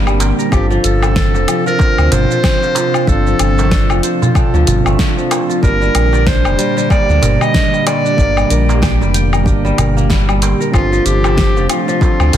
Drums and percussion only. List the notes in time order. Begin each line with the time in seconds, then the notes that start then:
0.07 low woodblock, shaker
0.20 closed hi-hat, darbuka ka, darbuka tek, shaker
0.39 shaker
0.52 kick, low woodblock, shaker
0.71 shaker
0.84 closed hi-hat, shaker
1.02 darbuka tek, low woodblock, shaker
1.16 kick, snare, shaker
1.34 darbuka ka, shaker
1.48 closed hi-hat, low woodblock, shaker
1.67 shaker
1.79 kick, darbuka tek, shaker
1.98 low woodblock, shaker
2.12 closed hi-hat, darbuka tek, darbuka dum, shaker
2.31 shaker
2.44 kick, snare, low woodblock, shaker
2.63 darbuka ka, shaker
2.75 closed hi-hat, darbuka ka, darbuka tek, shaker
2.94 low woodblock, shaker
3.07 kick, shaker
3.27 shaker
3.39 closed hi-hat, low woodblock, shaker
3.59 darbuka tek, shaker
3.71 kick, snare, shaker
3.89 darbuka ka, low woodblock, shaker
4.03 closed hi-hat, shaker
4.22 darbuka dum, shaker
4.35 kick, low woodblock, shaker
4.54 darbuka tek, shaker
4.67 closed hi-hat, darbuka dum, shaker
4.86 low woodblock, shaker
4.99 kick, snare, shaker
5.19 shaker
5.31 closed hi-hat, darbuka ka, darbuka tek, low woodblock, shaker
5.50 shaker
5.63 kick, shaker
5.82 shaker
5.95 closed hi-hat, low woodblock, shaker
6.13 darbuka tek, shaker
6.26 kick, snare, shaker
6.45 darbuka ka, low woodblock, shaker
6.59 closed hi-hat, shaker
6.78 shaker
6.90 kick, darbuka tek, low woodblock, shaker
7.10 shaker
7.22 closed hi-hat, darbuka tek, darbuka dum, shaker
7.41 low woodblock, shaker
7.54 kick, snare, shaker
7.73 darbuka ka, shaker
7.87 closed hi-hat, darbuka ka, darbuka tek, low woodblock, shaker
8.06 shaker
8.18 kick, shaker
8.37 low woodblock, shaker
8.50 closed hi-hat, shaker
8.69 darbuka tek, shaker
8.82 kick, snare, low woodblock, shaker
9.02 darbuka ka, shaker
9.14 closed hi-hat, shaker
9.33 low woodblock, shaker
9.46 kick, shaker
9.66 shaker
9.78 closed hi-hat, darbuka dum, low woodblock, shaker
9.98 shaker
10.10 kick, snare, shaker
10.29 low woodblock, shaker
10.42 closed hi-hat, darbuka ka, darbuka tek, shaker
10.61 shaker
10.74 kick, low woodblock, shaker
10.93 shaker
11.06 closed hi-hat, shaker
11.24 darbuka tek, low woodblock, shaker
11.37 kick, snare, shaker
11.57 darbuka ka, shaker
11.70 closed hi-hat, low woodblock, shaker
11.89 shaker
12.01 kick, darbuka tek, shaker
12.20 low woodblock, shaker
12.33 closed hi-hat, darbuka tek, darbuka dum